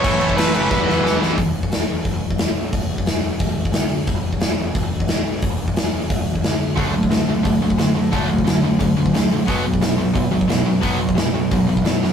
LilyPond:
<<
  \new Staff \with { instrumentName = "Overdriven electric guitar" } { \time 4/4 \key d \mixolydian \tempo 4 = 178 cis''4 b'8 b'2 r8 | r1 | r1 | r1 |
r1 | r1 | r1 | r1 |
r1 | }
  \new Staff \with { instrumentName = "Distorted electric guitar" } { \clef bass \time 4/4 \key d \mixolydian <a, e a cis' e'>8 <a, e a cis' e'>8 <a, e a cis' e'>8 <a, e a cis' e'>8 <e g b e'>8 <e g b e'>8 <e g b e'>8 <e g b e'>8 | r1 | r1 | r1 |
r1 | <d fis a>8 <d fis>8 <d fis>8 <d fis>8 <d fis>8 <d fis>8 <d fis>8 <d fis>8 | <d fis a>8 <d fis>8 <d fis>8 <d fis>8 <d fis>8 <d fis>8 <d fis>8 <d fis>8 | <b, fis b>8 <b, fis>8 <b, fis>8 <b, fis>8 <b, fis>8 <b, fis>8 <b, fis>8 <b, fis>8 |
<b, fis b>8 <b, fis>8 <b, fis>8 <b, fis>8 <b, fis>8 <b, fis>8 <b, fis>8 <b, fis>8 | }
  \new Staff \with { instrumentName = "Distorted electric guitar" } { \clef bass \time 4/4 \key d \mixolydian <a, e a>8 <a, e a>8 <a, e a>8 <a, e a>8 <e, b, e>8 <e, b, e>8 <e, b, e>8 <e, b, e>8 | r1 | r1 | r1 |
r1 | <d a d'>8 <d a>8 <d a>8 <d a>8 <d a>8 <d a>8 <d a>8 <d a>8 | <d a d'>8 <d a>8 <d a>8 <d a>8 <d a>8 <d a>8 <d a>8 <d a>8 | <b, fis b>8 <b, fis>8 <b, fis>8 <b, fis>8 <b, fis>8 <b, fis>8 <b, fis>8 <b, fis>8 |
<b, fis b>8 <b, fis>8 <b, fis>8 <b, fis>8 <b, fis>8 <b, fis>8 <b, fis>8 <b, fis>8 | }
  \new Staff \with { instrumentName = "Distorted electric guitar" } { \clef bass \time 4/4 \key d \mixolydian <a, e a>8 <a, e a>8 <a, e a>8 <a, e a>8 <e, b, e>8 <e, b, e>8 <e, b, e>8 <e, b, e>8 | r1 | r1 | r1 |
r1 | r1 | r1 | r1 |
r1 | }
  \new Staff \with { instrumentName = "Picked electric bass" } { \clef bass \time 4/4 \key d \mixolydian a,,8 a,,8 a,,8 fis,,8 e,,8 e,,8 e,,8 b,,8 | e,,4 e,,8 e,,8 e,,8 e,,8 e,,8 b,,8 | e,,4 e,,8 e,,8 e,,8 e,,8 d,8 d,8 | e,,4 e,,8 e,,8 e,,8 e,,8 e,,8 b,,8 |
e,,4 e,,8 e,,8 e,,8 e,,8 d,8 d,8 | d,4 d,8 d,8 d,8 d,8 d,8 a,8 | d,4 d,8 d,8 d,8 d,8 d,8 a,8 | b,,4 b,,8 b,,8 b,,8 b,,8 b,,8 fis,8 |
b,,4 b,,8 b,,8 b,,8 b,,8 b,,8 fis,8 | }
  \new DrumStaff \with { instrumentName = "Drums" } \drummode { \time 4/4 <cymc bd>8 cymc16 bd16 <cymc sn>8 cymc8 <bd sn>8 sn8 sn8 sn8 | <hho bd>8. bd16 <hho sn>4 <hho bd>8. bd16 <hho sn>4 | <hho bd>8. bd16 <hho sn>4 <hho bd>8. bd16 <hho sn>4 | <hho bd>8. bd16 <hho sn>4 <hho bd>8. bd16 <hho sn>4 |
<hho bd>8. bd16 <hho sn>4 <hho bd>8. bd16 <hho sn>4 | <hho bd>8. bd16 <hho sn>4 <hho bd>8. bd16 <hho sn>4 | <hho bd>8. bd16 <hho sn>4 <hho bd>8. bd16 <hho sn>4 | <hho bd>8. bd16 <hho sn>4 <hho bd>8. bd16 <hho sn>4 |
<hho bd>8. bd16 <hho sn>4 <hho bd>8. bd16 <hho sn>8 sn8 | }
>>